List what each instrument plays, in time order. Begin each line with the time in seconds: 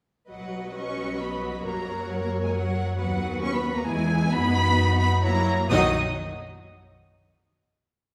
0.30 double bass section B1, viola section F#3 F#4, cello section F#3, violin section B4 D#5 F#5
0.75 cello section C#4, violin section C#6
1.20 cello section B3, violin section B5
1.64 double bass section F#2, cello section A#3, violin section A#4 C#5 A#5
2.09 cello section F#3, violin section F#5
2.21 cello section A#3, violin section A#5
2.43 cello section G#3, violin section G#5
2.55 cello section F#3, violin section F#5
2.97 double bass section D#2, cello section F#3, viola section B3 F#4, violin section B4 F#5
3.43 cello section C#4, violin section C#6
3.54 cello section B3, violin section B5
3.76 cello section A#3, violin section A#5
3.87 double bass section E2, cello section G#3, viola section E4, violin section G#4 G#5
4.32 double bass section F#2, cello section B3, viola section D#4, violin section F#4 B5
5.01 cello section B3, violin section B5
5.23 viola section F#3 E4, cello section A#3, violin section C#5 A#5
5.70 double bass section B1, cello section D#3, viola section F#3 D#4, violin section F#4 D#5 D#6